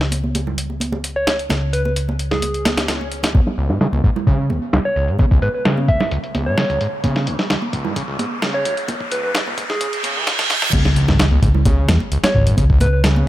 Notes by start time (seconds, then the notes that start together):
Already playing: C#2
0.01 snare
0.12 closed hi-hat, muted conga
0.24 high conga
0.35 closed hi-hat, muted conga
0.47 low conga
0.58 closed hi-hat
0.70 muted conga
0.80 closed hi-hat, high conga
0.92 muted conga
1.04 closed hi-hat
1.16 C#5
1.27 snare, closed hi-hat, muted conga
1.39 closed hi-hat
1.49 C#2, snare, closed hi-hat, muted conga, high conga
1.73 B4, closed hi-hat
1.85 B4, muted conga
1.96 closed hi-hat
2.08 muted conga, high conga
2.19 closed hi-hat
2.31 G#4, snare, low conga
2.42 closed hi-hat, swell, muted conga
2.54 closed hi-hat
2.65 snare, closed hi-hat, muted conga, high conga
2.77 snare, closed hi-hat
2.88 snare, closed hi-hat
3.01 muted conga
3.12 closed hi-hat
3.23 snare, closed hi-hat, muted conga
3.34 C#2, kick, closed hi-hat, riser, high conga
3.47 snare
3.58 C#2, closed hi-hat
3.70 G#2, snare
3.81 C#3, snare, closed hi-hat
3.93 C#2, high conga
4.04 G#2, kick, closed hi-hat
4.16 low conga
4.27 C#3, kick, closed hi-hat
4.50 C#2, closed hi-hat, high conga
4.73 C#2, snare, closed hi-hat
4.85 C#5
4.96 C#2, closed hi-hat
5.08 G#2, closed hi-hat
5.19 C#3, kick, closed hi-hat, high conga
5.31 C#2, kick
5.42 G#2 B4, closed hi-hat
5.55 B4
5.65 C#3, snare, closed hi-hat
5.77 high conga
5.88 C#2 E5, kick, closed hi-hat
6.00 snare, low conga
6.11 C#2, closed hi-hat
6.24 closed hi-hat
6.35 C#2, closed hi-hat, high conga
6.46 G#2 C#5
6.58 C#3, snare, closed hi-hat
6.70 C#2, closed hi-hat
6.81 G#2, closed hi-hat
7.04 C#3, kick, closed hi-hat, high conga
7.16 snare
7.27 C#2, closed hi-hat
7.39 snare
7.50 C#2, snare, closed hi-hat
7.62 high conga
7.73 C#2, kick, closed hi-hat
7.85 G#2, low conga
7.96 C#3, kick, closed hi-hat
8.08 C#2
8.19 G#2, closed hi-hat, high conga
8.42 C#3, snare, closed hi-hat
8.54 C#5
8.65 C#2, closed hi-hat
8.77 closed hi-hat
8.88 C#2, kick, closed hi-hat, high conga
9.01 kick
9.11 C#2 B4, closed hi-hat
9.23 G#2 B4
9.34 C#3, snare, closed hi-hat
9.46 C#2, high conga
9.58 G#2, kick, closed hi-hat
9.69 G#4, snare, low conga
9.81 C#3, closed hi-hat, reverse cymbal
9.93 closed hi-hat
10.03 C#3, closed hi-hat, high conga
10.16 E3
10.27 F#2, snare, closed hi-hat
10.39 C#2, snare, closed hi-hat
10.50 C#2, snare, closed hi-hat
10.62 C#2, snare, closed hi-hat
10.73 C#2, kick, closed hi-hat, crash, impact, high conga
10.85 snare, muted conga
10.96 C#2, closed hi-hat
11.08 G#2, snare, muted conga
11.19 C#3, snare, closed hi-hat
11.31 C#2, high conga
11.42 C#2 G#2, kick, closed hi-hat, muted conga
11.54 low conga
11.65 C#3, kick, closed hi-hat, muted conga
11.88 C#2 E2, snare, closed hi-hat, high conga
12.00 muted conga
12.12 C#2, closed hi-hat
12.24 C#5, snare, closed hi-hat, muted conga
12.35 G#1 C#2
12.47 G#2, closed hi-hat
12.57 C#2 C#3, kick, closed hi-hat, muted conga, high conga
12.70 C#2, kick
12.80 G#2 B4, closed hi-hat, muted conga
12.93 B4
13.04 C#3, snare, closed hi-hat
13.16 muted conga, high conga